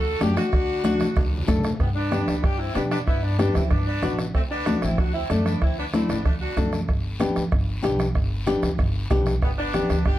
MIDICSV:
0, 0, Header, 1, 6, 480
1, 0, Start_track
1, 0, Key_signature, 1, "major"
1, 0, Tempo, 317628
1, 798, Time_signature, 4, 2, 24, 8
1, 15398, End_track
2, 0, Start_track
2, 0, Title_t, "Nylon-string guitar"
2, 0, Program_c, 0, 24
2, 312, Note_on_c, 0, 57, 77
2, 317, Note_on_c, 0, 62, 66
2, 321, Note_on_c, 0, 66, 83
2, 651, Note_off_c, 0, 57, 0
2, 653, Note_off_c, 0, 62, 0
2, 656, Note_off_c, 0, 66, 0
2, 1265, Note_on_c, 0, 57, 86
2, 1273, Note_on_c, 0, 62, 90
2, 1280, Note_on_c, 0, 66, 106
2, 1609, Note_off_c, 0, 57, 0
2, 1613, Note_off_c, 0, 62, 0
2, 1614, Note_off_c, 0, 66, 0
2, 2228, Note_on_c, 0, 57, 84
2, 2236, Note_on_c, 0, 62, 75
2, 2237, Note_on_c, 0, 69, 102
2, 2572, Note_off_c, 0, 57, 0
2, 2574, Note_off_c, 0, 62, 0
2, 2575, Note_off_c, 0, 69, 0
2, 3192, Note_on_c, 0, 59, 75
2, 3200, Note_on_c, 0, 62, 69
2, 3207, Note_on_c, 0, 67, 77
2, 3534, Note_off_c, 0, 59, 0
2, 3536, Note_off_c, 0, 62, 0
2, 3541, Note_off_c, 0, 67, 0
2, 4159, Note_on_c, 0, 59, 75
2, 4162, Note_on_c, 0, 62, 66
2, 4167, Note_on_c, 0, 67, 72
2, 4498, Note_off_c, 0, 59, 0
2, 4499, Note_off_c, 0, 62, 0
2, 4502, Note_off_c, 0, 67, 0
2, 5117, Note_on_c, 0, 59, 76
2, 5123, Note_on_c, 0, 62, 62
2, 5130, Note_on_c, 0, 67, 82
2, 5458, Note_off_c, 0, 59, 0
2, 5459, Note_off_c, 0, 62, 0
2, 5464, Note_off_c, 0, 67, 0
2, 6077, Note_on_c, 0, 59, 71
2, 6087, Note_on_c, 0, 62, 65
2, 6094, Note_on_c, 0, 66, 74
2, 6418, Note_off_c, 0, 59, 0
2, 6423, Note_off_c, 0, 62, 0
2, 6426, Note_off_c, 0, 66, 0
2, 7045, Note_on_c, 0, 57, 79
2, 7055, Note_on_c, 0, 62, 73
2, 7056, Note_on_c, 0, 66, 83
2, 7383, Note_off_c, 0, 57, 0
2, 7386, Note_off_c, 0, 62, 0
2, 7388, Note_off_c, 0, 66, 0
2, 8007, Note_on_c, 0, 57, 72
2, 8012, Note_on_c, 0, 62, 63
2, 8019, Note_on_c, 0, 69, 75
2, 8343, Note_off_c, 0, 57, 0
2, 8347, Note_off_c, 0, 62, 0
2, 8348, Note_off_c, 0, 69, 0
2, 8967, Note_on_c, 0, 57, 75
2, 8977, Note_on_c, 0, 62, 65
2, 8983, Note_on_c, 0, 64, 81
2, 9303, Note_off_c, 0, 57, 0
2, 9305, Note_off_c, 0, 62, 0
2, 9310, Note_off_c, 0, 64, 0
2, 9920, Note_on_c, 0, 57, 65
2, 9927, Note_on_c, 0, 62, 67
2, 9938, Note_on_c, 0, 69, 73
2, 10259, Note_off_c, 0, 57, 0
2, 10262, Note_off_c, 0, 62, 0
2, 10265, Note_off_c, 0, 69, 0
2, 10874, Note_on_c, 0, 59, 92
2, 10886, Note_on_c, 0, 62, 82
2, 10892, Note_on_c, 0, 67, 94
2, 11217, Note_off_c, 0, 59, 0
2, 11220, Note_off_c, 0, 62, 0
2, 11224, Note_off_c, 0, 67, 0
2, 11824, Note_on_c, 0, 59, 87
2, 11829, Note_on_c, 0, 62, 69
2, 11841, Note_on_c, 0, 67, 96
2, 12170, Note_off_c, 0, 59, 0
2, 12171, Note_off_c, 0, 62, 0
2, 12178, Note_off_c, 0, 67, 0
2, 12792, Note_on_c, 0, 59, 86
2, 12803, Note_on_c, 0, 62, 76
2, 12804, Note_on_c, 0, 67, 102
2, 13134, Note_off_c, 0, 59, 0
2, 13136, Note_off_c, 0, 62, 0
2, 13139, Note_off_c, 0, 67, 0
2, 13754, Note_on_c, 0, 59, 81
2, 13765, Note_on_c, 0, 62, 75
2, 13767, Note_on_c, 0, 67, 93
2, 14094, Note_off_c, 0, 59, 0
2, 14096, Note_off_c, 0, 62, 0
2, 14100, Note_off_c, 0, 67, 0
2, 14710, Note_on_c, 0, 59, 74
2, 14720, Note_on_c, 0, 62, 67
2, 14723, Note_on_c, 0, 67, 83
2, 15051, Note_off_c, 0, 59, 0
2, 15054, Note_off_c, 0, 62, 0
2, 15057, Note_off_c, 0, 67, 0
2, 15398, End_track
3, 0, Start_track
3, 0, Title_t, "Saxophone section"
3, 0, Program_c, 1, 65
3, 0, Note_on_c, 1, 66, 86
3, 0, Note_on_c, 1, 69, 109
3, 326, Note_off_c, 1, 69, 0
3, 328, Note_off_c, 1, 66, 0
3, 335, Note_on_c, 1, 67, 99
3, 341, Note_on_c, 1, 62, 77
3, 548, Note_off_c, 1, 62, 0
3, 566, Note_on_c, 1, 62, 87
3, 566, Note_on_c, 1, 66, 111
3, 567, Note_off_c, 1, 67, 0
3, 2425, Note_off_c, 1, 62, 0
3, 2425, Note_off_c, 1, 66, 0
3, 2721, Note_on_c, 1, 59, 83
3, 2732, Note_on_c, 1, 55, 62
3, 2829, Note_off_c, 1, 59, 0
3, 2838, Note_off_c, 1, 55, 0
3, 2958, Note_on_c, 1, 62, 107
3, 2969, Note_on_c, 1, 59, 79
3, 3630, Note_off_c, 1, 62, 0
3, 3636, Note_off_c, 1, 59, 0
3, 3676, Note_on_c, 1, 67, 99
3, 3688, Note_on_c, 1, 62, 84
3, 3915, Note_on_c, 1, 64, 107
3, 3920, Note_off_c, 1, 67, 0
3, 3926, Note_off_c, 1, 62, 0
3, 3927, Note_on_c, 1, 60, 82
3, 4147, Note_on_c, 1, 62, 84
3, 4157, Note_on_c, 1, 59, 72
3, 4160, Note_off_c, 1, 64, 0
3, 4166, Note_off_c, 1, 60, 0
3, 4259, Note_off_c, 1, 62, 0
3, 4267, Note_off_c, 1, 59, 0
3, 4394, Note_on_c, 1, 62, 101
3, 4405, Note_on_c, 1, 59, 69
3, 4504, Note_off_c, 1, 62, 0
3, 4513, Note_off_c, 1, 59, 0
3, 4634, Note_on_c, 1, 64, 90
3, 4648, Note_on_c, 1, 59, 76
3, 4862, Note_off_c, 1, 64, 0
3, 4870, Note_off_c, 1, 59, 0
3, 4875, Note_on_c, 1, 62, 98
3, 4892, Note_on_c, 1, 59, 73
3, 5107, Note_off_c, 1, 62, 0
3, 5115, Note_off_c, 1, 59, 0
3, 5125, Note_on_c, 1, 62, 91
3, 5133, Note_on_c, 1, 59, 73
3, 5348, Note_off_c, 1, 62, 0
3, 5353, Note_off_c, 1, 59, 0
3, 5368, Note_on_c, 1, 64, 86
3, 5378, Note_on_c, 1, 60, 66
3, 5599, Note_on_c, 1, 62, 87
3, 5607, Note_off_c, 1, 64, 0
3, 5612, Note_off_c, 1, 60, 0
3, 5612, Note_on_c, 1, 59, 69
3, 5825, Note_off_c, 1, 62, 0
3, 5833, Note_off_c, 1, 59, 0
3, 5846, Note_on_c, 1, 62, 105
3, 5857, Note_on_c, 1, 59, 78
3, 6293, Note_off_c, 1, 62, 0
3, 6299, Note_off_c, 1, 59, 0
3, 6573, Note_on_c, 1, 60, 83
3, 6581, Note_on_c, 1, 57, 64
3, 6680, Note_off_c, 1, 60, 0
3, 6686, Note_off_c, 1, 57, 0
3, 6813, Note_on_c, 1, 62, 97
3, 6821, Note_on_c, 1, 59, 78
3, 7257, Note_off_c, 1, 62, 0
3, 7261, Note_off_c, 1, 59, 0
3, 7293, Note_on_c, 1, 64, 87
3, 7295, Note_on_c, 1, 60, 72
3, 7528, Note_on_c, 1, 66, 88
3, 7530, Note_off_c, 1, 64, 0
3, 7531, Note_off_c, 1, 60, 0
3, 7540, Note_on_c, 1, 62, 70
3, 7767, Note_off_c, 1, 66, 0
3, 7769, Note_on_c, 1, 64, 100
3, 7773, Note_off_c, 1, 62, 0
3, 7780, Note_on_c, 1, 60, 78
3, 7991, Note_off_c, 1, 64, 0
3, 7997, Note_off_c, 1, 60, 0
3, 8011, Note_on_c, 1, 62, 84
3, 8012, Note_on_c, 1, 57, 70
3, 8226, Note_off_c, 1, 62, 0
3, 8244, Note_on_c, 1, 62, 83
3, 8249, Note_off_c, 1, 57, 0
3, 8253, Note_on_c, 1, 59, 69
3, 8468, Note_off_c, 1, 62, 0
3, 8473, Note_off_c, 1, 59, 0
3, 8491, Note_on_c, 1, 64, 85
3, 8500, Note_on_c, 1, 60, 66
3, 8712, Note_off_c, 1, 64, 0
3, 8717, Note_off_c, 1, 60, 0
3, 8742, Note_on_c, 1, 62, 85
3, 8743, Note_on_c, 1, 59, 69
3, 8847, Note_off_c, 1, 59, 0
3, 8847, Note_off_c, 1, 62, 0
3, 8977, Note_on_c, 1, 60, 83
3, 8980, Note_on_c, 1, 57, 66
3, 9195, Note_off_c, 1, 60, 0
3, 9197, Note_off_c, 1, 57, 0
3, 9217, Note_on_c, 1, 62, 82
3, 9220, Note_on_c, 1, 59, 61
3, 9435, Note_off_c, 1, 62, 0
3, 9437, Note_off_c, 1, 59, 0
3, 9455, Note_on_c, 1, 57, 65
3, 9456, Note_on_c, 1, 62, 72
3, 9561, Note_off_c, 1, 57, 0
3, 9561, Note_off_c, 1, 62, 0
3, 9691, Note_on_c, 1, 62, 74
3, 9693, Note_on_c, 1, 66, 87
3, 10135, Note_off_c, 1, 62, 0
3, 10136, Note_off_c, 1, 66, 0
3, 14247, Note_on_c, 1, 59, 87
3, 14257, Note_on_c, 1, 55, 64
3, 14354, Note_off_c, 1, 59, 0
3, 14362, Note_off_c, 1, 55, 0
3, 14487, Note_on_c, 1, 62, 112
3, 14494, Note_on_c, 1, 59, 86
3, 15153, Note_off_c, 1, 62, 0
3, 15157, Note_off_c, 1, 59, 0
3, 15208, Note_on_c, 1, 67, 100
3, 15211, Note_on_c, 1, 62, 86
3, 15398, Note_off_c, 1, 62, 0
3, 15398, Note_off_c, 1, 67, 0
3, 15398, End_track
4, 0, Start_track
4, 0, Title_t, "Upright bass"
4, 0, Program_c, 2, 32
4, 0, Note_on_c, 2, 38, 96
4, 224, Note_off_c, 2, 38, 0
4, 322, Note_on_c, 2, 42, 101
4, 512, Note_off_c, 2, 42, 0
4, 800, Note_on_c, 2, 38, 105
4, 1568, Note_off_c, 2, 38, 0
4, 1764, Note_on_c, 2, 38, 103
4, 2147, Note_off_c, 2, 38, 0
4, 2243, Note_on_c, 2, 42, 95
4, 2434, Note_off_c, 2, 42, 0
4, 2722, Note_on_c, 2, 43, 91
4, 3299, Note_off_c, 2, 43, 0
4, 3441, Note_on_c, 2, 38, 85
4, 3634, Note_off_c, 2, 38, 0
4, 3686, Note_on_c, 2, 43, 91
4, 4069, Note_off_c, 2, 43, 0
4, 4167, Note_on_c, 2, 47, 87
4, 4550, Note_off_c, 2, 47, 0
4, 4647, Note_on_c, 2, 43, 92
4, 5223, Note_off_c, 2, 43, 0
4, 5369, Note_on_c, 2, 38, 82
4, 5560, Note_off_c, 2, 38, 0
4, 5608, Note_on_c, 2, 43, 94
4, 5991, Note_off_c, 2, 43, 0
4, 6087, Note_on_c, 2, 33, 90
4, 6471, Note_off_c, 2, 33, 0
4, 6568, Note_on_c, 2, 38, 91
4, 7144, Note_off_c, 2, 38, 0
4, 7290, Note_on_c, 2, 33, 83
4, 7481, Note_off_c, 2, 33, 0
4, 7530, Note_on_c, 2, 38, 88
4, 7913, Note_off_c, 2, 38, 0
4, 8013, Note_on_c, 2, 42, 91
4, 8394, Note_off_c, 2, 42, 0
4, 8491, Note_on_c, 2, 38, 89
4, 9065, Note_off_c, 2, 38, 0
4, 9220, Note_on_c, 2, 33, 78
4, 9407, Note_off_c, 2, 33, 0
4, 9451, Note_on_c, 2, 38, 94
4, 9833, Note_off_c, 2, 38, 0
4, 9932, Note_on_c, 2, 42, 80
4, 10313, Note_off_c, 2, 42, 0
4, 10407, Note_on_c, 2, 31, 86
4, 10982, Note_off_c, 2, 31, 0
4, 11131, Note_on_c, 2, 38, 85
4, 11320, Note_off_c, 2, 38, 0
4, 11369, Note_on_c, 2, 31, 92
4, 11750, Note_off_c, 2, 31, 0
4, 11847, Note_on_c, 2, 35, 94
4, 12229, Note_off_c, 2, 35, 0
4, 12324, Note_on_c, 2, 31, 82
4, 12899, Note_off_c, 2, 31, 0
4, 13037, Note_on_c, 2, 38, 78
4, 13231, Note_off_c, 2, 38, 0
4, 13284, Note_on_c, 2, 31, 92
4, 13667, Note_off_c, 2, 31, 0
4, 13761, Note_on_c, 2, 35, 93
4, 14145, Note_off_c, 2, 35, 0
4, 14240, Note_on_c, 2, 31, 88
4, 14815, Note_off_c, 2, 31, 0
4, 14958, Note_on_c, 2, 38, 86
4, 15151, Note_off_c, 2, 38, 0
4, 15199, Note_on_c, 2, 31, 93
4, 15398, Note_off_c, 2, 31, 0
4, 15398, End_track
5, 0, Start_track
5, 0, Title_t, "Two-headed folk drums"
5, 319, Note_on_c, 9, 37, 93
5, 470, Note_off_c, 9, 37, 0
5, 561, Note_on_c, 9, 37, 95
5, 712, Note_off_c, 9, 37, 0
5, 800, Note_on_c, 9, 36, 78
5, 800, Note_on_c, 9, 37, 79
5, 951, Note_off_c, 9, 36, 0
5, 951, Note_off_c, 9, 37, 0
5, 1280, Note_on_c, 9, 37, 92
5, 1431, Note_off_c, 9, 37, 0
5, 1522, Note_on_c, 9, 37, 84
5, 1673, Note_off_c, 9, 37, 0
5, 1761, Note_on_c, 9, 36, 98
5, 1763, Note_on_c, 9, 37, 95
5, 1912, Note_off_c, 9, 36, 0
5, 1914, Note_off_c, 9, 37, 0
5, 2241, Note_on_c, 9, 36, 76
5, 2245, Note_on_c, 9, 37, 91
5, 2392, Note_off_c, 9, 36, 0
5, 2396, Note_off_c, 9, 37, 0
5, 2488, Note_on_c, 9, 37, 95
5, 2639, Note_off_c, 9, 37, 0
5, 2720, Note_on_c, 9, 37, 69
5, 2721, Note_on_c, 9, 36, 70
5, 2871, Note_off_c, 9, 37, 0
5, 2872, Note_off_c, 9, 36, 0
5, 3205, Note_on_c, 9, 37, 85
5, 3356, Note_off_c, 9, 37, 0
5, 3446, Note_on_c, 9, 37, 81
5, 3597, Note_off_c, 9, 37, 0
5, 3683, Note_on_c, 9, 36, 93
5, 3683, Note_on_c, 9, 37, 90
5, 3834, Note_off_c, 9, 36, 0
5, 3835, Note_off_c, 9, 37, 0
5, 4163, Note_on_c, 9, 37, 91
5, 4314, Note_off_c, 9, 37, 0
5, 4405, Note_on_c, 9, 37, 91
5, 4556, Note_off_c, 9, 37, 0
5, 4646, Note_on_c, 9, 36, 79
5, 4647, Note_on_c, 9, 37, 83
5, 4797, Note_off_c, 9, 36, 0
5, 4798, Note_off_c, 9, 37, 0
5, 5129, Note_on_c, 9, 37, 87
5, 5280, Note_off_c, 9, 37, 0
5, 5367, Note_on_c, 9, 37, 78
5, 5518, Note_off_c, 9, 37, 0
5, 5600, Note_on_c, 9, 37, 82
5, 5605, Note_on_c, 9, 36, 86
5, 5751, Note_off_c, 9, 37, 0
5, 5756, Note_off_c, 9, 36, 0
5, 6086, Note_on_c, 9, 37, 91
5, 6237, Note_off_c, 9, 37, 0
5, 6325, Note_on_c, 9, 37, 88
5, 6477, Note_off_c, 9, 37, 0
5, 6568, Note_on_c, 9, 36, 74
5, 6569, Note_on_c, 9, 37, 69
5, 6719, Note_off_c, 9, 36, 0
5, 6720, Note_off_c, 9, 37, 0
5, 7044, Note_on_c, 9, 37, 91
5, 7195, Note_off_c, 9, 37, 0
5, 7288, Note_on_c, 9, 37, 84
5, 7439, Note_off_c, 9, 37, 0
5, 7529, Note_on_c, 9, 36, 90
5, 7529, Note_on_c, 9, 37, 85
5, 7680, Note_off_c, 9, 36, 0
5, 7680, Note_off_c, 9, 37, 0
5, 8008, Note_on_c, 9, 37, 87
5, 8159, Note_off_c, 9, 37, 0
5, 8248, Note_on_c, 9, 37, 86
5, 8399, Note_off_c, 9, 37, 0
5, 8489, Note_on_c, 9, 37, 80
5, 8490, Note_on_c, 9, 36, 76
5, 8640, Note_off_c, 9, 37, 0
5, 8641, Note_off_c, 9, 36, 0
5, 8970, Note_on_c, 9, 37, 83
5, 9122, Note_off_c, 9, 37, 0
5, 9215, Note_on_c, 9, 37, 82
5, 9366, Note_off_c, 9, 37, 0
5, 9452, Note_on_c, 9, 36, 85
5, 9453, Note_on_c, 9, 37, 82
5, 9603, Note_off_c, 9, 36, 0
5, 9604, Note_off_c, 9, 37, 0
5, 9930, Note_on_c, 9, 36, 79
5, 9932, Note_on_c, 9, 37, 86
5, 10081, Note_off_c, 9, 36, 0
5, 10083, Note_off_c, 9, 37, 0
5, 10167, Note_on_c, 9, 37, 85
5, 10318, Note_off_c, 9, 37, 0
5, 10408, Note_on_c, 9, 36, 80
5, 10408, Note_on_c, 9, 37, 77
5, 10559, Note_off_c, 9, 36, 0
5, 10559, Note_off_c, 9, 37, 0
5, 10888, Note_on_c, 9, 37, 94
5, 11039, Note_off_c, 9, 37, 0
5, 11126, Note_on_c, 9, 37, 74
5, 11277, Note_off_c, 9, 37, 0
5, 11366, Note_on_c, 9, 36, 89
5, 11367, Note_on_c, 9, 37, 87
5, 11517, Note_off_c, 9, 36, 0
5, 11518, Note_off_c, 9, 37, 0
5, 11850, Note_on_c, 9, 37, 94
5, 12001, Note_off_c, 9, 37, 0
5, 12086, Note_on_c, 9, 37, 88
5, 12237, Note_off_c, 9, 37, 0
5, 12322, Note_on_c, 9, 37, 76
5, 12323, Note_on_c, 9, 36, 74
5, 12473, Note_off_c, 9, 37, 0
5, 12474, Note_off_c, 9, 36, 0
5, 12803, Note_on_c, 9, 37, 85
5, 12954, Note_off_c, 9, 37, 0
5, 13043, Note_on_c, 9, 37, 89
5, 13194, Note_off_c, 9, 37, 0
5, 13281, Note_on_c, 9, 36, 88
5, 13282, Note_on_c, 9, 37, 88
5, 13433, Note_off_c, 9, 36, 0
5, 13434, Note_off_c, 9, 37, 0
5, 13761, Note_on_c, 9, 36, 75
5, 13762, Note_on_c, 9, 37, 88
5, 13912, Note_off_c, 9, 36, 0
5, 13913, Note_off_c, 9, 37, 0
5, 14003, Note_on_c, 9, 37, 84
5, 14154, Note_off_c, 9, 37, 0
5, 14240, Note_on_c, 9, 36, 77
5, 14242, Note_on_c, 9, 37, 80
5, 14391, Note_off_c, 9, 36, 0
5, 14393, Note_off_c, 9, 37, 0
5, 14718, Note_on_c, 9, 37, 88
5, 14869, Note_off_c, 9, 37, 0
5, 14961, Note_on_c, 9, 37, 79
5, 15112, Note_off_c, 9, 37, 0
5, 15196, Note_on_c, 9, 37, 85
5, 15198, Note_on_c, 9, 36, 86
5, 15348, Note_off_c, 9, 37, 0
5, 15349, Note_off_c, 9, 36, 0
5, 15398, End_track
6, 0, Start_track
6, 0, Title_t, "Drums"
6, 313, Note_on_c, 9, 63, 89
6, 313, Note_on_c, 9, 73, 74
6, 464, Note_off_c, 9, 63, 0
6, 464, Note_off_c, 9, 73, 0
6, 554, Note_on_c, 9, 73, 72
6, 705, Note_off_c, 9, 73, 0
6, 792, Note_on_c, 9, 74, 70
6, 943, Note_off_c, 9, 74, 0
6, 1272, Note_on_c, 9, 73, 79
6, 1279, Note_on_c, 9, 63, 97
6, 1424, Note_off_c, 9, 73, 0
6, 1430, Note_off_c, 9, 63, 0
6, 1509, Note_on_c, 9, 73, 80
6, 1520, Note_on_c, 9, 64, 67
6, 1660, Note_off_c, 9, 73, 0
6, 1671, Note_off_c, 9, 64, 0
6, 1749, Note_on_c, 9, 74, 78
6, 1760, Note_on_c, 9, 63, 74
6, 1900, Note_off_c, 9, 74, 0
6, 1911, Note_off_c, 9, 63, 0
6, 2080, Note_on_c, 9, 64, 79
6, 2231, Note_off_c, 9, 64, 0
6, 2232, Note_on_c, 9, 73, 68
6, 2383, Note_off_c, 9, 73, 0
6, 2400, Note_on_c, 9, 64, 102
6, 2473, Note_on_c, 9, 73, 68
6, 2551, Note_off_c, 9, 64, 0
6, 2554, Note_on_c, 9, 64, 95
6, 2624, Note_off_c, 9, 73, 0
6, 2705, Note_off_c, 9, 64, 0
6, 2717, Note_on_c, 9, 74, 66
6, 2868, Note_off_c, 9, 74, 0
6, 3200, Note_on_c, 9, 63, 85
6, 3203, Note_on_c, 9, 73, 68
6, 3352, Note_off_c, 9, 63, 0
6, 3354, Note_off_c, 9, 73, 0
6, 3445, Note_on_c, 9, 73, 73
6, 3597, Note_off_c, 9, 73, 0
6, 3684, Note_on_c, 9, 74, 73
6, 3835, Note_off_c, 9, 74, 0
6, 4162, Note_on_c, 9, 63, 84
6, 4164, Note_on_c, 9, 73, 67
6, 4313, Note_off_c, 9, 63, 0
6, 4315, Note_off_c, 9, 73, 0
6, 4405, Note_on_c, 9, 73, 73
6, 4556, Note_off_c, 9, 73, 0
6, 4641, Note_on_c, 9, 74, 69
6, 4792, Note_off_c, 9, 74, 0
6, 5124, Note_on_c, 9, 63, 95
6, 5127, Note_on_c, 9, 73, 72
6, 5275, Note_off_c, 9, 63, 0
6, 5278, Note_off_c, 9, 73, 0
6, 5363, Note_on_c, 9, 63, 61
6, 5363, Note_on_c, 9, 64, 61
6, 5366, Note_on_c, 9, 73, 71
6, 5514, Note_off_c, 9, 63, 0
6, 5514, Note_off_c, 9, 64, 0
6, 5518, Note_off_c, 9, 73, 0
6, 5609, Note_on_c, 9, 74, 75
6, 5760, Note_off_c, 9, 74, 0
6, 6085, Note_on_c, 9, 63, 83
6, 6085, Note_on_c, 9, 64, 82
6, 6091, Note_on_c, 9, 73, 64
6, 6236, Note_off_c, 9, 63, 0
6, 6236, Note_off_c, 9, 64, 0
6, 6242, Note_off_c, 9, 73, 0
6, 6327, Note_on_c, 9, 73, 70
6, 6479, Note_off_c, 9, 73, 0
6, 6568, Note_on_c, 9, 74, 67
6, 6719, Note_off_c, 9, 74, 0
6, 7049, Note_on_c, 9, 73, 70
6, 7052, Note_on_c, 9, 63, 92
6, 7201, Note_off_c, 9, 73, 0
6, 7203, Note_off_c, 9, 63, 0
6, 7287, Note_on_c, 9, 73, 71
6, 7288, Note_on_c, 9, 63, 71
6, 7438, Note_off_c, 9, 73, 0
6, 7439, Note_off_c, 9, 63, 0
6, 7530, Note_on_c, 9, 74, 72
6, 7681, Note_off_c, 9, 74, 0
6, 8007, Note_on_c, 9, 63, 91
6, 8013, Note_on_c, 9, 73, 68
6, 8158, Note_off_c, 9, 63, 0
6, 8164, Note_off_c, 9, 73, 0
6, 8252, Note_on_c, 9, 73, 71
6, 8403, Note_off_c, 9, 73, 0
6, 8492, Note_on_c, 9, 74, 70
6, 8643, Note_off_c, 9, 74, 0
6, 8968, Note_on_c, 9, 73, 70
6, 8969, Note_on_c, 9, 63, 93
6, 9119, Note_off_c, 9, 73, 0
6, 9120, Note_off_c, 9, 63, 0
6, 9207, Note_on_c, 9, 73, 76
6, 9211, Note_on_c, 9, 63, 68
6, 9211, Note_on_c, 9, 64, 64
6, 9359, Note_off_c, 9, 73, 0
6, 9362, Note_off_c, 9, 63, 0
6, 9362, Note_off_c, 9, 64, 0
6, 9451, Note_on_c, 9, 74, 74
6, 9602, Note_off_c, 9, 74, 0
6, 9925, Note_on_c, 9, 73, 68
6, 9927, Note_on_c, 9, 63, 83
6, 9927, Note_on_c, 9, 64, 86
6, 10077, Note_off_c, 9, 73, 0
6, 10078, Note_off_c, 9, 63, 0
6, 10078, Note_off_c, 9, 64, 0
6, 10164, Note_on_c, 9, 73, 75
6, 10315, Note_off_c, 9, 73, 0
6, 10403, Note_on_c, 9, 74, 69
6, 10554, Note_off_c, 9, 74, 0
6, 10880, Note_on_c, 9, 73, 72
6, 10883, Note_on_c, 9, 63, 84
6, 11031, Note_off_c, 9, 73, 0
6, 11034, Note_off_c, 9, 63, 0
6, 11123, Note_on_c, 9, 73, 69
6, 11274, Note_off_c, 9, 73, 0
6, 11359, Note_on_c, 9, 74, 75
6, 11510, Note_off_c, 9, 74, 0
6, 11837, Note_on_c, 9, 73, 67
6, 11845, Note_on_c, 9, 63, 79
6, 11988, Note_off_c, 9, 73, 0
6, 11996, Note_off_c, 9, 63, 0
6, 12075, Note_on_c, 9, 73, 70
6, 12226, Note_off_c, 9, 73, 0
6, 12317, Note_on_c, 9, 74, 71
6, 12468, Note_off_c, 9, 74, 0
6, 12796, Note_on_c, 9, 73, 67
6, 12803, Note_on_c, 9, 63, 89
6, 12947, Note_off_c, 9, 73, 0
6, 12954, Note_off_c, 9, 63, 0
6, 13036, Note_on_c, 9, 73, 73
6, 13041, Note_on_c, 9, 63, 63
6, 13041, Note_on_c, 9, 64, 69
6, 13187, Note_off_c, 9, 73, 0
6, 13192, Note_off_c, 9, 63, 0
6, 13192, Note_off_c, 9, 64, 0
6, 13273, Note_on_c, 9, 74, 75
6, 13424, Note_off_c, 9, 74, 0
6, 13752, Note_on_c, 9, 73, 64
6, 13766, Note_on_c, 9, 63, 86
6, 13766, Note_on_c, 9, 64, 86
6, 13903, Note_off_c, 9, 73, 0
6, 13917, Note_off_c, 9, 63, 0
6, 13917, Note_off_c, 9, 64, 0
6, 13992, Note_on_c, 9, 73, 70
6, 14143, Note_off_c, 9, 73, 0
6, 14232, Note_on_c, 9, 74, 72
6, 14383, Note_off_c, 9, 74, 0
6, 14713, Note_on_c, 9, 73, 73
6, 14723, Note_on_c, 9, 63, 94
6, 14864, Note_off_c, 9, 73, 0
6, 14874, Note_off_c, 9, 63, 0
6, 14954, Note_on_c, 9, 73, 72
6, 14958, Note_on_c, 9, 63, 62
6, 15105, Note_off_c, 9, 73, 0
6, 15110, Note_off_c, 9, 63, 0
6, 15190, Note_on_c, 9, 74, 76
6, 15341, Note_off_c, 9, 74, 0
6, 15398, End_track
0, 0, End_of_file